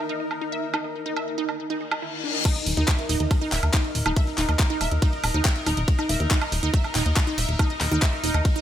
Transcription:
Already playing: ambient pad D#4 A#4 A#5, synth texture D#4 A#4
0.09 synth arpeggio sound D#4
0.20 synth arpeggio sound D#5
0.31 high woodblock
0.42 synth arpeggio sound D#4, ambient pad G#5
0.52 synth arpeggio sound E5
0.74 synth arpeggio sound D#4, high woodblock
0.84 synth arpeggio sound D#5
1.06 synth arpeggio sound D#4
1.16 synth arpeggio sound E5, high woodblock
1.38 synth arpeggio sound D#4
1.49 synth arpeggio sound D#5, high woodblock
1.59 reverse cymbal
1.70 synth arpeggio sound D#4
1.81 synth arpeggio sound D#4
1.91 synth arpeggio sound D#4, high woodblock
2.02 synth arpeggio sound E4
2.24 synth arpeggio sound D4
2.34 synth arpeggio sound D#5
2.45 synth arpeggio sound D#4, synth texture D#4 A#4, kick, closed hi-hat, crash, ride, high woodblock
2.56 synth arpeggio sound D#5, closed hi-hat
2.66 analog synth bass D#1, open hi-hat
2.77 analog synth bass D#2, synth arpeggio sound D#4, closed hi-hat
2.88 synth arpeggio sound E5, kick, clap, closed hi-hat, ride, high woodblock
2.99 closed hi-hat
3.09 analog synth bass D#1, synth arpeggio sound D#4, open hi-hat
3.20 analog synth bass D#2, synth arpeggio sound D#5, closed hi-hat
3.31 kick, closed hi-hat, ride, high woodblock
3.42 synth arpeggio sound D#4, closed hi-hat
3.52 analog synth bass D#1, synth arpeggio sound E5, clap, open hi-hat
3.63 analog synth bass D#2, ambient pad A#5, closed hi-hat, high woodblock
3.74 synth arpeggio sound D#4, kick, clap, closed hi-hat, ride
3.84 synth arpeggio sound D#5, closed hi-hat
3.95 analog synth bass D#1, open hi-hat
4.06 analog synth bass D#1, synth arpeggio sound D#4, closed hi-hat, high woodblock
4.16 synth arpeggio sound E5, kick, closed hi-hat, ride
4.27 closed hi-hat
4.38 analog synth bass D#1, synth arpeggio sound D#4, clap, open hi-hat
4.49 analog synth bass D#2, synth arpeggio sound D#5, closed hi-hat, high woodblock
4.59 kick, clap, closed hi-hat, ride
4.70 synth arpeggio sound D#4, closed hi-hat
4.81 analog synth bass D#1, synth arpeggio sound E5, open hi-hat, high woodblock
4.91 analog synth bass D#2, closed hi-hat
5.02 synth arpeggio sound D#4, kick, closed hi-hat, ride
5.13 synth arpeggio sound D#5, closed hi-hat
5.24 analog synth bass D#1, open hi-hat, high woodblock
5.34 analog synth bass D#2, synth arpeggio sound D#4, closed hi-hat
5.45 synth arpeggio sound E5, kick, clap, closed hi-hat, ride
5.56 closed hi-hat
5.66 analog synth bass D#1, synth arpeggio sound D#4, open hi-hat, high woodblock
5.77 analog synth bass D#1, synth arpeggio sound D#5, closed hi-hat
5.88 kick, closed hi-hat, ride
5.99 synth arpeggio sound D#4, closed hi-hat, high woodblock
6.09 analog synth bass D#1, synth arpeggio sound E5, open hi-hat
6.20 analog synth bass D#2, closed hi-hat
6.31 synth arpeggio sound D#4, kick, clap, closed hi-hat, ride
6.41 synth arpeggio sound D#5, closed hi-hat, high woodblock
6.52 analog synth bass D#1, open hi-hat
6.63 analog synth bass D#2, synth arpeggio sound D#4, closed hi-hat
6.74 synth arpeggio sound E5, kick, closed hi-hat, ride
6.84 closed hi-hat, high woodblock
6.95 analog synth bass D#1, synth arpeggio sound D#4, clap, open hi-hat
7.06 analog synth bass D#2, synth arpeggio sound D#5, closed hi-hat
7.16 kick, clap, closed hi-hat, ride, high woodblock
7.27 synth arpeggio sound D#4, closed hi-hat
7.38 analog synth bass D#1, synth arpeggio sound E5, open hi-hat
7.49 analog synth bass D#1, closed hi-hat
7.59 synth arpeggio sound D#4, kick, closed hi-hat, ride, high woodblock
7.70 synth arpeggio sound D#5, closed hi-hat
7.81 analog synth bass D#1, clap, open hi-hat
7.91 analog synth bass D#2, synth arpeggio sound D#4, closed hi-hat
8.02 synth arpeggio sound E5, kick, clap, closed hi-hat, ride, high woodblock
8.13 closed hi-hat
8.24 analog synth bass D#1, synth arpeggio sound D#4, open hi-hat
8.34 analog synth bass D#2, synth arpeggio sound D#5, closed hi-hat, high woodblock
8.45 kick, closed hi-hat, ride
8.56 synth arpeggio sound D#4, closed hi-hat

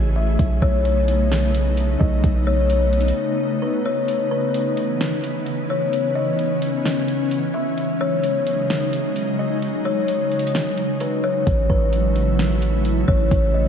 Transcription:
Already playing: 808-style bass A1, ambient pad C#3 A3 E4 G#4, kalimba D#5
0.16 kalimba E5
0.39 808-style bass B1, ambient pad C#3 B3 D#4, kick, closed hi-hat
0.62 808-style bass B1, kalimba C#5, kick
0.85 closed hi-hat
1.08 closed hi-hat
1.32 snare, closed hi-hat
1.54 closed hi-hat
1.77 closed hi-hat
2.00 808-style bass B1, kalimba D#5, kick
2.24 808-style bass B1, kick, closed hi-hat
2.47 kalimba C#5
2.70 closed hi-hat
2.93 closed hi-hat
3.01 closed hi-hat
3.08 closed hi-hat
3.62 kalimba B4
3.86 kalimba C#5
4.08 ambient pad E3, closed hi-hat
4.31 kalimba B4
4.54 closed hi-hat
4.77 closed hi-hat
5.01 snare, closed hi-hat
5.24 closed hi-hat
5.46 closed hi-hat
5.70 kalimba C#5
5.93 ambient pad C#4, closed hi-hat
6.15 kalimba D#5
6.39 closed hi-hat
6.62 closed hi-hat
6.85 snare, closed hi-hat
7.08 closed hi-hat
7.31 closed hi-hat
7.54 kalimba E5
7.78 ambient pad F#3 G#3 D#4, closed hi-hat
8.01 kalimba C#5
8.23 closed hi-hat
8.47 closed hi-hat
8.70 snare, closed hi-hat
8.93 closed hi-hat
9.16 closed hi-hat
9.39 kalimba D#5
9.62 closed hi-hat
9.85 kalimba C#5
10.08 closed hi-hat
10.32 closed hi-hat
10.39 closed hi-hat
10.47 closed hi-hat
10.55 snare, closed hi-hat
10.78 closed hi-hat
11.00 kalimba B4, closed hi-hat
11.24 kalimba C#5
11.47 808-style bass A1, ambient pad C#3 A3 E4, kick, closed hi-hat
11.70 808-style bass A1, kalimba B4, kick
11.93 closed hi-hat
12.16 closed hi-hat
12.39 snare, closed hi-hat
12.62 closed hi-hat
12.85 closed hi-hat
13.08 808-style bass A1, kalimba C#5, kick
13.31 808-style bass A1, ambient pad F#4, kick, closed hi-hat
13.54 kalimba D#5

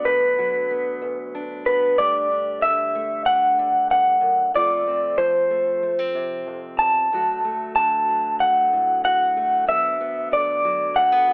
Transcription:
Already playing: steel-string acoustic guitar D2 F#3 B3 D4
0.05 steel-string acoustic guitar D3, clean electric guitar B4
0.38 steel-string acoustic guitar F#3
0.71 steel-string acoustic guitar B3
1.01 steel-string acoustic guitar D2
1.35 steel-string acoustic guitar D4
1.66 steel-string acoustic guitar B3, clean electric guitar B4
1.98 steel-string acoustic guitar G2 A3 D4 G4, clean electric guitar D5
2.31 steel-string acoustic guitar D4
2.62 steel-string acoustic guitar D3, clean electric guitar E5
2.95 steel-string acoustic guitar A3
3.26 steel-string acoustic guitar D4, clean electric guitar F#5
3.59 steel-string acoustic guitar D3
3.90 steel-string acoustic guitar G2, clean electric guitar F#5
4.21 steel-string acoustic guitar F#2
4.54 steel-string acoustic guitar F2 A3 C4 F4, clean electric guitar D5
4.87 steel-string acoustic guitar C4
5.17 steel-string acoustic guitar F3, clean electric guitar C5
5.50 steel-string acoustic guitar A3
5.83 steel-string acoustic guitar A3
5.99 steel-string acoustic guitar C4
6.15 steel-string acoustic guitar C3
6.47 steel-string acoustic guitar F2
6.79 steel-string acoustic guitar E2, clean electric guitar A5
7.12 steel-string acoustic guitar D2 F#3 A3 F#4
7.44 steel-string acoustic guitar A3
7.76 steel-string acoustic guitar D3, clean electric guitar A5
8.08 steel-string acoustic guitar F#3
8.40 steel-string acoustic guitar A3, clean electric guitar F#5
8.73 steel-string acoustic guitar A2
9.04 steel-string acoustic guitar F#4, clean electric guitar F#5
9.37 steel-string acoustic guitar A3
9.66 steel-string acoustic guitar D2 F#3 B3 D4, clean electric guitar E5
10.00 steel-string acoustic guitar B3
10.32 steel-string acoustic guitar D3, clean electric guitar D5
10.64 steel-string acoustic guitar F#3
10.96 steel-string acoustic guitar A3, clean electric guitar F#5
11.12 steel-string acoustic guitar B3
11.28 steel-string acoustic guitar D2

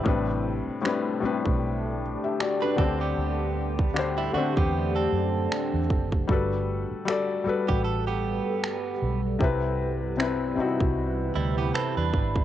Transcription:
Already playing: felt piano G4 E5
0.03 fingered electric bass A1, felt piano A2 G3 C4 D4, ambient pad A3 D4 G4, kick
0.08 felt piano B4
0.67 muted fingered electric bass stroke
0.81 felt piano A2 G3 C4 D4, finger snap
0.86 felt piano B4
1.20 felt piano A2 G3 C4 D4, muted fingered electric bass stroke
1.25 felt piano B4
1.46 fingered electric bass B1, kick
2.24 felt piano G4 E5
2.40 felt piano F#4 D5, finger snap
2.62 clean electric guitar D4 B4, felt piano D4 B4
2.76 fingered electric bass D2, felt piano D3 D4 G4, ambient pad D3 A3, clean electric guitar C4 A4, kick
2.81 felt piano C4
3.01 clean electric guitar B3 G4
3.18 fingered electric bass D2
3.79 kick
3.94 felt piano D3 D4 G4, finger snap
3.99 felt piano C5
4.18 clean electric guitar G3 E4
4.33 felt piano D3 D4 G4, clean electric guitar A3 F#4, ambient pad D4, muted fingered electric bass stroke
4.38 felt piano C4
4.57 fingered electric bass E2, clean electric guitar B3 G4, kick
4.96 clean electric guitar C4 A4
5.12 fingered electric bass F#2
5.52 finger snap
5.74 fingered electric bass E2
5.90 fingered electric bass F#1, kick
6.12 kick
6.28 fingered electric bass G1, felt piano G3 F#4 A4, ambient pad G3 A4 B4 F#5, kick
6.32 felt piano B4
6.91 muted fingered electric bass stroke
7.05 felt piano G3 F#4 A4, finger snap
7.10 felt piano D5
7.44 felt piano G3 F#4 A4, muted fingered electric bass stroke
7.49 felt piano B4
7.68 fingered electric bass A1, clean electric guitar B3 G4, kick
7.85 clean electric guitar A4
8.07 clean electric guitar B3 G4
8.64 finger snap
9.02 fingered electric bass B1
9.39 fingered electric bass C2, felt piano C3 C4 E4, ambient pad C3 E4 B4, kick
9.44 felt piano B4
10.17 felt piano C3 C4 E4, finger snap
10.22 felt piano B4
10.55 felt piano C3 C4 D#4, muted fingered electric bass stroke
10.60 felt piano F#4
10.65 felt piano E4
10.80 fingered electric bass C2, kick
11.35 fingered electric bass D2, clean electric guitar G3 E4
11.58 clean electric guitar B3 G4
11.74 clean electric guitar C4 A4, finger snap
11.97 fingered electric bass E2, clean electric guitar D4 B4
12.14 fingered electric bass G#1, kick
12.36 kick

